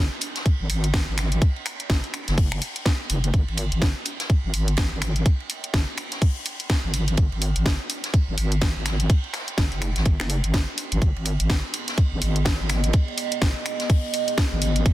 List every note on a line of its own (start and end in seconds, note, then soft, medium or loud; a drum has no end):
0.21 open hi-hat loud
0.21 ride medium
0.35 snare soft
0.35 closed hi-hat medium
0.46 kick loud
0.46 closed hi-hat medium
0.46 ride medium
0.60 0.68 G#1 medium
0.70 1.06 G#1 loud
0.70 open hi-hat loud
0.70 ride medium
0.84 closed hi-hat soft
0.94 kick loud
0.94 snare loud
0.94 closed hi-hat medium
0.94 ride medium
1.08 1.40 G#1 medium
1.18 finger snap medium
1.18 snare soft
1.18 open hi-hat medium
1.18 ride medium
1.32 closed hi-hat soft
1.42 kick loud
1.42 closed hi-hat medium
1.42 ride medium
1.56 ride soft
1.66 finger snap medium
1.66 open hi-hat loud
1.66 ride medium
1.80 closed hi-hat soft
1.90 2.02 G#1 loud
1.90 kick loud
1.90 snare loud
1.90 closed hi-hat medium
1.90 ride medium
2.04 closed hi-hat soft
2.14 finger snap medium
2.14 open hi-hat medium
2.14 ride medium
2.28 2.60 F#1 loud
2.28 snare soft
2.28 closed hi-hat soft
2.38 kick loud
2.38 closed hi-hat medium
2.38 open hi-hat medium
2.52 finger snap medium
2.62 open hi-hat loud
2.62 ride medium
2.76 closed hi-hat soft
2.85 kick loud
2.85 snare loud
2.85 closed hi-hat medium
2.85 ride medium
3.10 3.32 F#1 medium
3.10 open hi-hat medium
3.10 ride medium
3.24 closed hi-hat soft
3.24 ride soft
3.34 3.46 G#1 loud
3.34 kick loud
3.34 closed hi-hat medium
3.34 ride medium
3.48 3.70 G#1 medium
3.48 ride soft
3.57 open hi-hat loud
3.57 ride medium
3.72 3.94 G#1 medium
3.72 closed hi-hat medium
3.81 kick loud
3.81 snare loud
3.81 closed hi-hat medium
3.81 ride medium
4.05 open hi-hat medium
4.05 ride medium
4.20 snare soft
4.20 closed hi-hat soft
4.30 kick loud
4.30 closed hi-hat medium
4.30 ride medium
4.44 4.52 G#1 loud
4.54 4.90 G#1 loud
4.54 open hi-hat loud
4.54 ride medium
4.68 closed hi-hat soft
4.77 kick loud
4.77 snare loud
4.77 closed hi-hat medium
4.77 ride medium
4.92 5.24 G#1 medium
5.01 finger snap medium
5.01 snare soft
5.01 open hi-hat medium
5.01 ride medium
5.16 closed hi-hat medium
5.26 kick loud
5.26 closed hi-hat medium
5.26 ride medium
5.40 ride soft
5.50 open hi-hat loud
5.50 ride medium
5.64 closed hi-hat soft
5.74 5.86 G#1 medium
5.74 kick loud
5.74 snare loud
5.74 closed hi-hat medium
5.74 ride medium
5.97 finger snap medium
5.97 open hi-hat medium
5.97 ride medium
6.12 snare soft
6.12 closed hi-hat soft
6.22 kick loud
6.22 closed hi-hat medium
6.22 open hi-hat medium
6.46 open hi-hat loud
6.46 ride medium
6.60 closed hi-hat medium
6.70 kick loud
6.70 snare loud
6.70 closed hi-hat medium
6.70 ride medium
6.84 7.16 G#1 medium
6.94 open hi-hat medium
6.94 ride medium
7.08 closed hi-hat medium
7.08 ride soft
7.17 7.30 G#1 loud
7.17 kick loud
7.17 closed hi-hat medium
7.17 ride medium
7.32 7.54 G#1 medium
7.32 ride soft
7.42 open hi-hat loud
7.42 ride medium
7.56 7.78 G#1 loud
7.56 closed hi-hat medium
7.65 kick loud
7.65 snare loud
7.65 closed hi-hat medium
7.65 ride medium
7.90 open hi-hat medium
7.90 ride medium
8.04 snare soft
8.04 closed hi-hat medium
8.14 kick loud
8.14 closed hi-hat medium
8.14 ride medium
8.28 8.36 G#1 loud
8.37 8.74 G#1 loud
8.37 open hi-hat medium
8.37 ride medium
8.52 closed hi-hat medium
8.61 kick loud
8.61 snare loud
8.61 closed hi-hat medium
8.61 ride medium
8.76 9.08 G#1 medium
8.86 finger snap medium
8.86 snare soft
8.86 open hi-hat medium
8.86 ride medium
9.00 closed hi-hat medium
9.10 kick loud
9.10 closed hi-hat medium
9.10 ride medium
9.24 ride soft
9.33 finger snap medium
9.33 snare loud
9.33 open hi-hat loud
9.33 ride medium
9.48 closed hi-hat medium
9.58 9.70 G#1 loud
9.58 kick loud
9.58 snare loud
9.58 closed hi-hat medium
9.58 ride medium
9.72 9.94 F#1 medium
9.72 closed hi-hat soft
9.82 finger snap medium
9.82 open hi-hat medium
9.82 ride medium
9.96 10.18 G#1 medium
9.96 snare soft
9.96 closed hi-hat medium
10.05 kick loud
10.05 closed hi-hat medium
10.05 ride medium
10.20 10.42 F#1 medium
10.20 finger snap medium
10.20 snare soft
10.30 open hi-hat medium
10.30 ride medium
10.44 10.66 G#1 loud
10.44 closed hi-hat medium
10.54 kick loud
10.54 snare loud
10.54 closed hi-hat medium
10.54 ride medium
10.78 open hi-hat medium
10.78 ride medium
10.92 11.00 G#1 medium
10.92 closed hi-hat medium
10.92 ride soft
11.02 11.14 G#1 loud
11.02 14.93 B3 medium
11.02 14.93 G#4 medium
11.02 14.93 D#5 medium
11.02 kick loud
11.02 closed hi-hat medium
11.02 ride medium
11.16 11.38 G#1 medium
11.16 ride soft
11.25 open hi-hat loud
11.25 ride medium
11.40 11.62 G#1 medium
11.40 closed hi-hat medium
11.49 kick loud
11.49 snare loud
11.49 closed hi-hat medium
11.49 ride medium
11.74 open hi-hat medium
11.74 ride medium
11.88 snare soft
11.88 closed hi-hat medium
11.98 kick loud
11.98 closed hi-hat medium
11.98 ride medium
12.12 12.20 G#1 medium
12.22 12.58 G#1 medium
12.22 open hi-hat loud
12.22 ride medium
12.36 closed hi-hat medium
12.45 kick loud
12.45 snare loud
12.45 closed hi-hat medium
12.45 ride medium
12.60 12.92 G#1 medium
12.69 finger snap medium
12.69 snare soft
12.69 open hi-hat medium
12.69 ride medium
12.84 closed hi-hat medium
12.93 kick loud
12.93 closed hi-hat medium
12.93 ride medium
13.08 ride soft
13.18 open hi-hat loud
13.18 ride medium
13.32 closed hi-hat medium
13.42 13.54 G#1 loud
13.42 kick loud
13.42 snare loud
13.42 closed hi-hat medium
13.42 ride medium
13.66 finger snap medium
13.66 open hi-hat loud
13.66 ride medium
13.80 snare soft
13.80 closed hi-hat medium
13.89 kick loud
13.89 closed hi-hat medium
13.89 open hi-hat medium
14.14 open hi-hat loud
14.14 ride medium
14.28 closed hi-hat medium
14.37 kick loud
14.37 snare loud
14.37 closed hi-hat medium
14.37 ride medium
14.52 14.84 G#1 medium
14.62 open hi-hat medium
14.62 ride medium
14.76 closed hi-hat medium
14.76 ride soft
14.86 14.93 G#1 loud
14.86 kick loud
14.86 closed hi-hat medium
14.86 ride medium